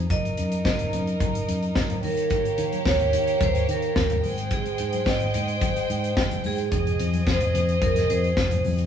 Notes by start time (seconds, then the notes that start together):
0.10 F#1 D#4 A#4 D#5, kick, closed hi-hat
0.25 closed hi-hat
0.37 F#2, closed hi-hat, muted conga
0.52 closed hi-hat, high conga
0.65 F#1 D#5, kick, snare
0.79 F#1, closed hi-hat
0.93 F#2, closed hi-hat, muted conga, low conga
1.07 closed hi-hat
1.20 F#1, kick, closed hi-hat, high conga
1.35 closed hi-hat
1.48 F#2, closed hi-hat, muted conga
1.63 closed hi-hat
1.75 F#1, kick, snare
1.90 closed hi-hat, high conga, low conga
2.03 D#3 A#3 G4 A#4 C#5, open hi-hat, muted conga, high conga, low conga
2.17 closed hi-hat
2.30 kick, closed hi-hat
2.45 closed hi-hat
2.58 D#3, closed hi-hat, muted conga
2.73 closed hi-hat, high conga
2.85 D#2 C#5, kick, snare, muted conga
2.99 D#2, closed hi-hat
3.13 D#3, closed hi-hat, muted conga, low conga
3.27 closed hi-hat
3.41 D#2 C5, kick, closed hi-hat, muted conga, high conga
3.55 closed hi-hat
3.69 D#3 A#4, closed hi-hat, muted conga
3.82 closed hi-hat
3.96 D#2, kick, snare
4.10 closed hi-hat, high conga, low conga
4.23 G#1 G#3 C5 G5, open hi-hat, high conga, low conga
4.38 closed hi-hat
4.51 G#4, kick, closed hi-hat
4.66 closed hi-hat
4.78 G#2, closed hi-hat, muted conga
4.93 closed hi-hat, high conga
5.06 G#1 D#5, kick, snare
5.20 G#1, closed hi-hat
5.34 G#2, closed hi-hat, low conga
5.48 closed hi-hat
5.61 G#1, kick, closed hi-hat, high conga
5.76 closed hi-hat
5.89 G#2, closed hi-hat, muted conga
6.04 closed hi-hat
6.17 G#1, kick, snare
6.31 closed hi-hat, high conga, low conga
6.44 G#2 G#4, open hi-hat, muted conga, high conga, low conga
6.58 closed hi-hat
6.72 F1 C4 G#4 D#5, kick, closed hi-hat
6.87 closed hi-hat
6.99 F2, closed hi-hat, muted conga
7.13 closed hi-hat, high conga
7.27 F1 C5, kick, snare
7.41 F1, closed hi-hat
7.54 F2, closed hi-hat, muted conga, low conga
7.69 closed hi-hat
7.82 F1 A#4, kick, closed hi-hat, muted conga, high conga
7.96 snare, closed hi-hat
8.10 F2 C5, closed hi-hat, muted conga
8.24 closed hi-hat
8.37 F1, kick, snare, muted conga
8.51 closed hi-hat, high conga, low conga
8.64 F2, open hi-hat, muted conga, high conga, low conga
8.79 closed hi-hat